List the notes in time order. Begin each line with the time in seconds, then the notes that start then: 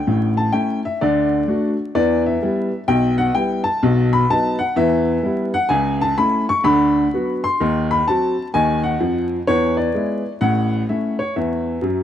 Already playing: G5
0.07 A1 A2
0.37 A5
0.52 A3 C#4 E4 G5
0.85 E5
1.01 D2 D3 D5
1.48 A3 D4 F#4
1.95 E2 E3 D5
2.26 E5
2.42 G3 B3 E4
2.88 B1 B2 G5
3.18 F#5
3.35 G3 B3 E4 G5
3.64 A5
3.83 B1 B2
4.13 B5
4.30 F#3 B3 D#4 A5
4.59 F#5
4.76 E2 E3 E5
5.23 G3 B3 E4
5.54 F#5
5.69 C#2 C#3 G#5
6.01 A5
6.18 A3 C#4 E4 B5
6.49 C#6
6.64 D2 D3 B5
7.14 F#3 B3 F#4
7.44 C6
7.60 D#2 D#3
7.91 B5
8.08 F#3 C4 F#4 A5
8.54 D#2 D#3 G#5
8.84 F#5
9.00 F2 F3
9.47 E2 E3 C#5
9.77 D5
9.94 G#3 B3 E4
10.41 A1 A2 F#5
10.89 A3 C#4 E4 E5
11.19 C#5
11.36 E2 E3 E5
11.82 F#2 F#3